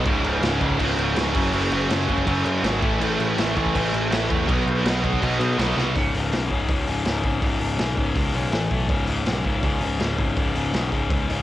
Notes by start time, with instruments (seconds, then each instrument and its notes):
0.05 picked electric bass C#1, distorted electric guitar C#2 G#2 C#3 G#3 E4, kick, crash
0.23 picked electric bass C#1, crash
0.41 picked electric bass C#1, distorted electric guitar C#2 G#2 C#3, snare, crash
0.60 picked electric bass C#1, distorted electric guitar C#2 G#2 C#3, kick, crash
0.70 kick
0.79 picked electric bass C#1, distorted electric guitar C#2 G#2 C#3, kick, crash
0.97 picked electric bass C#1, crash
1.16 picked electric bass C#1, distorted electric guitar C#2 G#2 C#3, snare, crash
1.34 picked electric bass F#1, distorted electric guitar F#2 C#3 F#3 A3 C#4 F#4, kick, crash
1.52 picked electric bass F#1, distorted electric guitar F#2 C#3 F#3, crash
1.71 picked electric bass F#1, crash
1.90 picked electric bass F#1, distorted electric guitar F#2 C#3 F#3, snare, crash
2.08 picked electric bass F#1, distorted electric guitar F#2 C#3 F#3, kick, crash
2.18 kick
2.26 picked electric bass F#1, distorted electric guitar F#2 C#3 F#3, kick, crash
2.45 picked electric bass F#2, crash
2.63 picked electric bass G#1, distorted electric guitar F#2 C#3 F#3 A3 C#4 F#4, snare, crash
2.82 picked electric bass A1, distorted electric guitar A2 E3 A3 C#4 E4 A4, kick, crash
3.00 picked electric bass A1, distorted electric guitar A2 E3 A3, crash
3.19 picked electric bass A1, crash
3.38 picked electric bass A1, distorted electric guitar A2 E3 A3, snare, crash
3.56 picked electric bass A1, distorted electric guitar A2 E3 A3, kick, crash
3.66 kick
3.75 picked electric bass A1, distorted electric guitar A2 E3 A3, kick, crash
3.93 picked electric bass A1, crash
4.11 picked electric bass A1, distorted electric guitar A2 E3 A3 C#4 E4 A4, snare, crash
4.29 picked electric bass E2, distorted electric guitar A2 E3 A3, kick, crash
4.48 picked electric bass B1, distorted electric guitar B2 F#3 B3 D#4 F#4 B4, kick, crash
4.66 picked electric bass B1, crash
4.84 picked electric bass B1, distorted electric guitar B2 F#3 B3, snare, crash
5.03 picked electric bass B1, distorted electric guitar B2 F#3 B3, kick, crash
5.13 kick
5.21 picked electric bass B1, distorted electric guitar B2 F#3 B3, kick, crash
5.40 picked electric bass B2, crash
5.58 picked electric bass B1, distorted electric guitar B2 F#3 B3, snare, crash
5.75 picked electric bass C2, distorted electric guitar B2 F#3 B3 D#4 F#4 B4, snare
5.95 picked electric bass C#1, distorted electric guitar C#2 G#2 C#3, kick, open hi-hat
6.13 picked electric bass C#1, distorted electric guitar C#2 G#2 C#3, open hi-hat
6.32 picked electric bass B1, distorted electric guitar C#2 G#2 C#3, snare, open hi-hat
6.50 picked electric bass C#1, distorted electric guitar C#2 G#2 C#3, kick, open hi-hat
6.68 picked electric bass C#2, distorted electric guitar C#2 G#2 C#3, kick, open hi-hat
6.87 picked electric bass C#1, distorted electric guitar C#2 G#2 C#3, open hi-hat
7.05 picked electric bass C#1, distorted electric guitar C#2 G#2 C#3, snare, open hi-hat
7.23 picked electric bass G#1, distorted electric guitar C#2 G#2 C#3, kick, open hi-hat
7.41 picked electric bass C#1, distorted electric guitar C#2 G#2 C#3, kick, open hi-hat
7.60 picked electric bass C#1, distorted electric guitar C#2 G#2 C#3, open hi-hat
7.77 picked electric bass B1, distorted electric guitar C#2 G#2 C#3, snare, open hi-hat
7.96 picked electric bass C#1, distorted electric guitar C#2 G#2 C#3, kick, open hi-hat
8.15 distorted electric guitar C#2 G#2 C#3, picked electric bass C#2, kick, open hi-hat
8.34 picked electric bass B1, distorted electric guitar C#2 G#2 C#3, open hi-hat
8.52 picked electric bass A1, distorted electric guitar A2 E3 A3, snare, open hi-hat
8.71 picked electric bass B1, distorted electric guitar A2 E3 A3, kick, open hi-hat
8.89 picked electric bass C#1, distorted electric guitar C#2 G#2 C#3, kick, open hi-hat
9.07 picked electric bass C#1, distorted electric guitar C#2 G#2 C#3, open hi-hat
9.25 picked electric bass B1, distorted electric guitar C#2 G#2 C#3, snare, open hi-hat
9.44 picked electric bass C#1, distorted electric guitar C#2 G#2 C#3, kick, open hi-hat
9.62 distorted electric guitar C#2 G#2 C#3, picked electric bass C#2, kick, open hi-hat
9.81 picked electric bass C#1, distorted electric guitar C#2 G#2 C#3, open hi-hat
9.99 picked electric bass C#1, distorted electric guitar C#2 G#2 C#3, snare, open hi-hat
10.17 picked electric bass G#1, distorted electric guitar C#2 G#2 C#3, kick, open hi-hat
10.36 picked electric bass C#1, distorted electric guitar C#2 G#2 C#3, kick, open hi-hat
10.54 picked electric bass C#1, distorted electric guitar C#2 G#2 C#3, open hi-hat
10.73 picked electric bass B1, distorted electric guitar C#2 G#2 C#3, snare, open hi-hat
10.92 picked electric bass C#1, distorted electric guitar C#2 G#2 C#3, kick, open hi-hat
11.10 distorted electric guitar C#2 G#2 C#3, picked electric bass C#2, kick, open hi-hat
11.29 picked electric bass C#1, distorted electric guitar C#2 G#2 C#3, open hi-hat